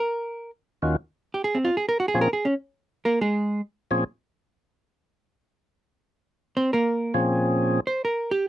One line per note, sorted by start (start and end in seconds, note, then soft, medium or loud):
0.00 0.50 A#4 medium
0.82 0.96 D#2 medium
0.82 0.96 D#3 medium
0.82 0.96 C#4 medium
0.82 0.96 F4 medium
0.82 0.97 F#4 medium
1.34 1.42 G4 medium
1.44 1.57 G#4 medium
1.55 1.69 C4 medium
1.65 1.75 F4 medium
1.77 1.85 G#4 medium
1.89 1.99 A#4 medium
2.00 2.08 F#4 medium
2.08 2.19 G#4 medium
2.14 2.28 A#2 medium
2.14 2.28 F3 medium
2.14 2.28 C4 medium
2.14 2.28 C#4 medium
2.14 2.29 G#4 medium
2.21 2.29 A#4 medium
2.33 2.45 G#4 medium
2.45 2.53 C#4 medium
3.05 3.19 A#3 medium
3.05 3.19 A#4 medium
3.21 3.60 G#3 medium
3.21 3.60 G#4 medium
3.91 4.04 A#2 medium
3.91 4.04 F3 medium
3.91 4.04 C4 medium
3.91 4.04 C#4 medium
3.91 4.04 G#4 medium
6.57 6.70 C4 medium
6.57 6.70 C5 medium
6.73 7.12 A#3 medium
6.73 7.12 A#4 medium
7.14 7.80 A#2 medium
7.14 7.80 F3 medium
7.14 7.80 C4 medium
7.14 7.81 C#4 medium
7.14 7.80 G#4 medium
7.87 8.01 C5 medium
8.05 8.30 A#4 medium
8.31 8.45 G4 medium